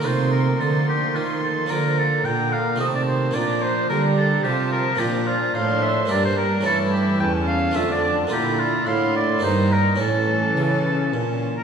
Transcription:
X:1
M:3/4
L:1/16
Q:1/4=108
K:Bb
V:1 name="Violin section"
c'4 c'8 | b4 b4 a4 | b4 b4 a4 | [K:Aphr] b4 c'4 b4 |
a12 | b4 c'4 b4 | a8- a2 z2 |]
V:2 name="Oboe"
c2 B2 A2 G2 F2 A2 | B2 A2 g2 f2 e d c2 | d2 c2 B2 A2 G2 B2 | [K:Aphr] G2 F2 f2 e2 d c B2 |
A2 G2 g2 f2 e d d2 | G2 F2 f2 d2 c2 B2 | A8 z3 B |]
V:3 name="Violin section"
B,12 | B,8 C4 | D4 D4 F4 | [K:Aphr] D4 D4 D4 |
E4 ^C4 D4 | E8 _E4 | ^C8- C2 z2 |]
V:4 name="Harpsichord"
[A,EF]12 | [B,DF]8 [A,E]4 | [B,DF]12 | [K:Aphr] [B,DF]8 [B,DG]4 |
[A,^CE]8 [A,DF]4 | [B,DF]8 [B,_EG]4 | [^CE]12 |]
V:5 name="Harpsichord" clef=bass
C,4 D,4 E,4 | D,4 B,,4 C,4 | B,,4 D,4 C,4 | [K:Aphr] B,,4 A,,4 G,,4 |
G,,4 E,,4 F,,4 | B,,4 A,,4 G,,4 | A,,4 ^C,4 B,,4 |]
V:6 name="Viola section" clef=bass
E,4 F,8 | F,4 D,4 E,4 | F,4 G,4 F,4 | [K:Aphr] F,8 G,4 |
E,8 D,4- | D,4 D,4 _E,4 | E,8- E,2 z2 |]
V:7 name="Cello section" clef=bass
C,4 D,4 E,4 | D,4 B,,4 C,4 | B,,4 D,4 C,4 | [K:Aphr] B,,4 A,,4 G,,4 |
G,,4 E,,4 F,,4 | B,,4 A,,4 G,,4 | A,,4 ^C,4 B,,4 |]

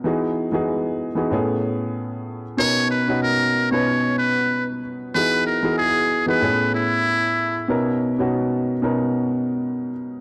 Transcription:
X:1
M:4/4
L:1/16
Q:"Swing 16ths" 1/4=94
K:B
V:1 name="Muted trumpet"
z16 | c2 B2 A3 c3 B3 z3 | B2 A2 G3 B3 E6 | z16 |]
V:2 name="Grand piano"
[E,B,DFG]3 [E,B,DFG]3 z [E,B,DFG] [=A,,=A,B,CG]6- [A,,A,B,CG] z | [B,,B,CDA]3 [B,,B,CDF]3 z [B,,B,CDB]6- [B,,B,CDB] z2 | [E,B,DFG]3 [E,B,DFG]3 z [E,B,DFG] [=A,,=A,B,CG]6- [A,,A,B,CG] z | [B,,B,CDA]3 [B,,B,CDF]3 z [B,,B,CDA]6- [B,,B,CDA] z2 |]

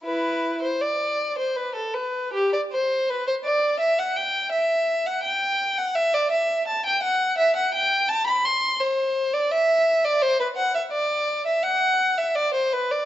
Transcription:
X:1
M:3/4
L:1/16
Q:1/4=84
K:Em
V:1 name="Violin"
[EB]3 c d3 c B A B2 | G d c2 B c d2 e f g2 | e3 f g3 f e d e2 | a g f2 e f g2 a b c'2 |
[K:Dmix] c3 d e3 d c B f e | d3 e f3 e d c B d |]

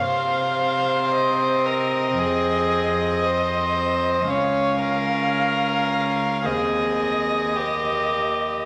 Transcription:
X:1
M:4/4
L:1/8
Q:1/4=56
K:Bbdor
V:1 name="Violin"
f2 e6 | f4 e4 |]
V:2 name="Violin"
c3 B A2 c2 | d B3 A2 G2 |]
V:3 name="Viola"
C8 | D4 C2 B,2 |]
V:4 name="Cello" clef=bass
C,4 F,,4 | D,,4 E,,4 |]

